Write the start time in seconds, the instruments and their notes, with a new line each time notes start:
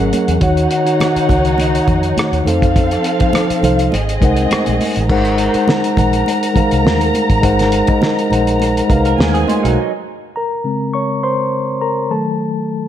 Already playing: tine electric piano F#3 C#4 G#4 A#4 D#5 F#5, violin section C#4 A#4 F#5
0.00 fingered electric bass G#1
0.13 closed hi-hat, high conga
0.28 fingered electric bass E2, closed hi-hat
0.40 fingered electric bass D#2, tine electric piano D#3 D#4 F#4 C#5 F#5, violin section D#4 C#5 F#5, kick, closed hi-hat
0.57 closed hi-hat
0.71 closed hi-hat
0.85 tine electric piano D#3 D#4 F#4 C#5 F#5, closed hi-hat
1.00 cross-stick, closed hi-hat, high conga
1.16 muted fingered electric bass stroke, closed hi-hat
1.27 fingered electric bass C#2, tine electric piano D#3 D#4 F#4 C#5 F#5, kick, closed hi-hat, muted conga
1.45 closed hi-hat
1.58 closed hi-hat, muted conga
1.75 closed hi-hat
1.88 fingered electric bass F2, kick, closed hi-hat, low conga
2.03 closed hi-hat
2.17 muted fingered electric bass stroke, cross-stick, closed hi-hat, high conga
2.32 fingered electric bass D#2, closed hi-hat
2.45 fingered electric bass F2, tine electric piano F3 D#4 A4 C5 F5, violin section C4 A4 F5, closed hi-hat, high conga
2.62 kick, closed hi-hat
2.76 kick, closed hi-hat
2.91 cross-stick, closed hi-hat
3.04 closed hi-hat
3.19 tine electric piano F3 D#4 A4 C5 F5, kick, closed hi-hat
3.33 cross-stick, closed hi-hat, high conga
3.50 muted fingered electric bass stroke, closed hi-hat
3.62 fingered electric bass C2, tine electric piano F3 D#4 A4 C5 F5, closed hi-hat, muted conga, low conga
3.79 closed hi-hat
3.92 fingered electric bass G#1, violin section C4 G#4 D#5, closed hi-hat, muted conga
4.09 closed hi-hat
4.21 fingered electric bass C2, tine electric piano G#3 D#4 A#4 C5 F#5, kick, closed hi-hat, muted conga
4.37 closed hi-hat
4.51 muted fingered electric bass stroke, cross-stick, closed hi-hat, high conga
4.66 fingered electric bass A#1, closed hi-hat, high conga
4.81 open hi-hat, high conga
4.96 fingered electric bass A1, closed hi-hat
5.09 tine electric piano G#3 D#4 A#4 C5 F#5, violin section A#4 A#5, kick, crash
5.25 closed hi-hat
5.38 closed hi-hat
5.53 tine electric piano G#3 D#4 A#4 C5 F#5, muted fingered electric bass stroke, closed hi-hat
5.68 snare, high conga
5.84 closed hi-hat
5.96 fingered electric bass A#1, tine electric piano G#3 D#4 A#4 C5 F#5, kick, closed hi-hat, muted conga, low conga
6.13 closed hi-hat
6.26 closed hi-hat, muted conga
6.43 closed hi-hat
6.54 tine electric piano G#3 D#4 A#4 C5 F5, muted fingered electric bass stroke, kick, closed hi-hat, muted conga, low conga
6.71 fingered electric bass C2, closed hi-hat
6.85 fingered electric bass D#2, snare, high conga
7.01 closed hi-hat
7.14 closed hi-hat, high conga
7.30 fingered electric bass A1, kick, closed hi-hat
7.41 fingered electric bass G#1, tine electric piano G#3 D#4 A#4 C5 F#5, kick, closed hi-hat
7.59 snare, closed hi-hat
7.72 closed hi-hat
7.86 tine electric piano G#3 D#4 A#4 C5 D#5, muted fingered electric bass stroke, kick, closed hi-hat
8.02 snare, high conga
8.19 closed hi-hat
8.29 fingered electric bass A#1, tine electric piano G#3 D#4 A#4 C5 F#5, closed hi-hat, muted conga
8.47 closed hi-hat
8.60 closed hi-hat, muted conga
8.77 closed hi-hat
8.88 fingered electric bass C2, tine electric piano G#3 D#4 A#4 B4 F5, kick, closed hi-hat, muted conga
8.97 tine electric piano C5
9.05 clean electric guitar A#4, closed hi-hat
9.18 fingered electric bass D#2, violin section G#4 G#5, snare, high conga
9.34 clean electric guitar C4 G#4, closed hi-hat
9.48 clean electric guitar G#3 F4, closed hi-hat, high conga
9.63 fingered electric bass B1, clean electric guitar F#3 D#4, closed hi-hat
10.36 tine electric piano A#4 A#5
10.64 tine electric piano C#3 G#3 C4
10.94 tine electric piano C#5 C#6
11.23 tine electric piano C5 C6
11.82 tine electric piano A#4 A#5
12.11 tine electric piano D#3 F#3 A3 A4 A5